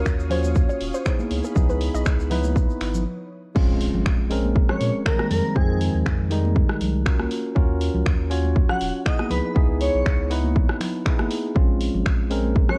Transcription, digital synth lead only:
4.69 C#5
5.06 A#4
5.31 A#4
5.56 G#4
8.69 F#5
9.06 D#5
9.31 B4
9.44 B4
9.81 C#5
12.69 C#5

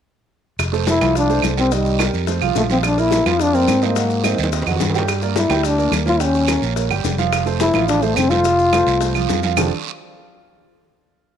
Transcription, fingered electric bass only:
0.59 F1
1.01 C2
1.43 C2
2.13 F2
2.42 C2
2.55 A#1
3.26 F2
3.68 G#2
4.39 D#2
4.66 F2
4.80 G2
5.49 D2
5.92 D#2
6.62 A#1
6.90 G1
7.04 F1
7.74 A1
8.16 F1
8.87 C2
9.29 F2
9.56 F1

